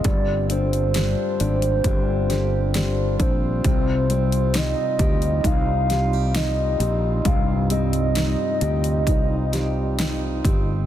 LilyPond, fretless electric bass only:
\new Staff \with { instrumentName = "Fretless electric bass" } { \clef bass \time 4/4 \key c \minor \tempo 4 = 66 g,,4~ g,,16 r16 aes,,8 g,,4. bes,,8 | c,4~ c,16 r16 d,8 c,4. bes,,8 | c,4~ c,16 r16 d,8 c,4. g,,8 | }